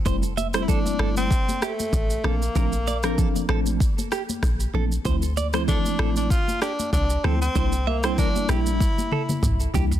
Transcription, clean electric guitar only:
X:1
M:4/4
L:1/16
Q:"Swing 16ths" 1/4=96
K:F
V:1 name="Clean electric guitar"
c z e c A z A z3 G z3 A z | B z d B A z A z3 G z3 A z | c z d c A z A z3 G z3 A z | c z e c B z G z3 A z3 G z |]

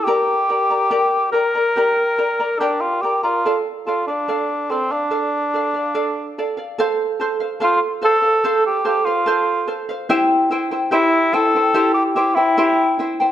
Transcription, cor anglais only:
X:1
M:4/4
L:1/16
Q:1/4=72
K:F
V:1 name="Cor anglais"
G6 B6 D F G F- | F z F D3 C D6- D z2 | z4 F2 A3 G G F3 z2 | z4 E2 A3 G G E3 z2 |]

